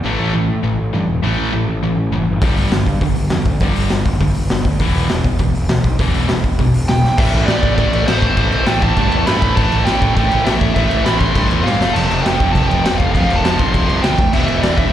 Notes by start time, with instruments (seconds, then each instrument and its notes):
0.04 picked electric bass A1, distorted electric guitar A2 E3 A3
0.19 picked electric bass A1
0.34 picked electric bass A1, distorted electric guitar A2 E3
0.49 picked electric bass A2
0.63 picked electric bass A1, distorted electric guitar A2 E3
0.79 picked electric bass A1
0.93 picked electric bass G2, distorted electric guitar A2 E3
1.08 picked electric bass E1
1.23 picked electric bass A1, distorted electric guitar A2 E3 A3
1.38 picked electric bass A1
1.53 picked electric bass A1, distorted electric guitar A2 E3
1.68 picked electric bass A1
1.82 picked electric bass A1, distorted electric guitar A2 E3
1.97 picked electric bass A1
2.12 picked electric bass F#1, distorted electric guitar A2 E3
2.27 picked electric bass G1
2.41 picked electric bass G1, distorted electric guitar G2 D3 G3, kick, open hi-hat
2.57 picked electric bass G1, open hi-hat
2.71 picked electric bass G1, distorted electric guitar G2 D3, snare, open hi-hat
2.86 picked electric bass G2, kick, open hi-hat
3.01 picked electric bass G1, distorted electric guitar G2 D3, kick, open hi-hat
3.15 picked electric bass G1, open hi-hat
3.30 picked electric bass F2, distorted electric guitar G2 D3, snare, open hi-hat
3.45 picked electric bass D2, kick, open hi-hat
3.60 picked electric bass G1, distorted electric guitar G2 D3 G3, kick, open hi-hat
3.76 picked electric bass G1, open hi-hat
3.90 picked electric bass G1, distorted electric guitar G2 D3, snare, open hi-hat
4.05 picked electric bass G1, kick, open hi-hat
4.20 picked electric bass G1, distorted electric guitar G2 D3, kick, open hi-hat
4.34 picked electric bass G1, open hi-hat
4.50 picked electric bass G1, distorted electric guitar G2 D3, snare, open hi-hat
4.65 picked electric bass D2, kick, open hi-hat
4.79 picked electric bass E1, distorted electric guitar E2 B2 E3, kick, open hi-hat
4.95 picked electric bass E1, open hi-hat
5.09 picked electric bass E1, distorted electric guitar E2 B2, snare, open hi-hat
5.24 picked electric bass E2, kick, open hi-hat
5.39 picked electric bass E1, distorted electric guitar E2 B2, kick, open hi-hat
5.54 picked electric bass E1, open hi-hat
5.69 picked electric bass D2, distorted electric guitar E2 B2, snare, open hi-hat
5.84 picked electric bass B1, kick, open hi-hat
5.99 picked electric bass E1, distorted electric guitar E2 B2 E3, kick, open hi-hat
6.14 picked electric bass E1, open hi-hat
6.28 picked electric bass E1, distorted electric guitar E2 B2, snare, open hi-hat
6.44 picked electric bass E1, kick, open hi-hat
6.59 picked electric bass E1, distorted electric guitar E2 B2, kick, open hi-hat
6.74 picked electric bass E1, open hi-hat
6.88 picked electric bass E1, distorted electric guitar E2 B2, lead electric guitar G5, snare, open hi-hat
7.04 picked electric bass B1, snare
7.18 picked electric bass A1, distorted electric guitar A2 E3 A3, lead electric guitar E5, kick, crash
7.33 picked electric bass A1, crash
7.46 picked electric bass A1, distorted electric guitar A2 E3 A3, lead electric guitar D5, snare, crash
7.63 picked electric bass A1, kick, crash
7.75 picked electric bass A1, distorted electric guitar A2 E3 A3, lead electric guitar D5, kick, crash
7.93 picked electric bass A1, crash
8.06 picked electric bass A1, distorted electric guitar A2 E3 A3, lead electric guitar C5, snare, crash
8.22 picked electric bass A1, kick, crash
8.37 picked electric bass A1, distorted electric guitar A2 E3 A3, lead electric guitar C5, kick, crash
8.52 picked electric bass A1, crash
8.66 picked electric bass A1, distorted electric guitar A2 E3 A3, lead electric guitar G5, snare, crash
8.82 picked electric bass A1, lead electric guitar A5, kick, crash
8.96 picked electric bass G2, distorted electric guitar A2 E3 A3, kick, crash
9.12 picked electric bass E2, crash
9.27 picked electric bass G2, distorted electric guitar A2 E3 A3, lead electric guitar B5, snare, crash
9.42 picked electric bass A1, kick, crash
9.56 picked electric bass A1, distorted electric guitar A2 E3 A3, lead electric guitar A5, kick, crash
9.72 picked electric bass A1, crash
9.85 picked electric bass A1, distorted electric guitar A2 E3 A3, lead electric guitar G5, snare, crash
10.02 picked electric bass A1, kick, crash
10.15 picked electric bass A1, distorted electric guitar A2 E3 A3, lead electric guitar G5, kick, crash
10.31 picked electric bass A1, crash
10.45 picked electric bass A1, distorted electric guitar A2 E3 A3, lead electric guitar E5, snare, crash
10.61 picked electric bass A1, kick, crash
10.74 picked electric bass A1, distorted electric guitar A2 E3 A3, lead electric guitar E5, kick, crash
10.91 picked electric bass A1, crash
11.05 picked electric bass A1, distorted electric guitar A2 E3 A3, lead electric guitar B5, snare, crash
11.19 picked electric bass A1, lead electric guitar C6, kick, crash
11.35 picked electric bass G2, distorted electric guitar A2 E3 A3, kick, crash
11.51 picked electric bass E2, crash
11.63 picked electric bass G2, distorted electric guitar A2 E3 A3, lead electric guitar F5, snare
11.81 picked electric bass F1, snare
11.93 picked electric bass F1, distorted electric guitar F2 C3 F3, lead electric guitar A5, crash
12.11 picked electric bass F1, crash
12.22 picked electric bass F1, distorted electric guitar C3 F3, lead electric guitar G5, snare, crash
12.26 distorted electric guitar F2
12.40 picked electric bass F1, kick, crash
12.53 picked electric bass F1, distorted electric guitar F2 C3 F3, lead electric guitar A5, kick, crash
12.68 picked electric bass F1, lead electric guitar G5, crash
12.85 picked electric bass F1, distorted electric guitar F2 C3 F3, snare, crash
12.98 picked electric bass F1, lead electric guitar F5, kick, crash
13.11 picked electric bass F1, distorted electric guitar F2, lead electric guitar F5, kick
13.15 distorted electric guitar C3 F3, crash
13.30 picked electric bass F1, crash
13.36 lead electric guitar A5
13.44 picked electric bass F1, distorted electric guitar F2 C3 F3, snare, crash
13.59 picked electric bass F1, lead electric guitar C6, kick, crash
13.73 picked electric bass D2, distorted electric guitar F2 C3 F3, lead electric guitar C6, kick, crash
13.89 picked electric bass C2, crash
14.02 picked electric bass D#2, distorted electric guitar F2 C3 F3, lead electric guitar G5, snare, crash
14.18 picked electric bass E1, kick, crash
14.33 picked electric bass E1, distorted electric guitar E2 B2 E3, lead electric guitar E5, crash
14.48 picked electric bass E1, crash
14.63 picked electric bass E1, distorted electric guitar E2 B2 E3, lead electric guitar D5, snare, crash
14.77 picked electric bass E1, lead electric guitar E5, kick, crash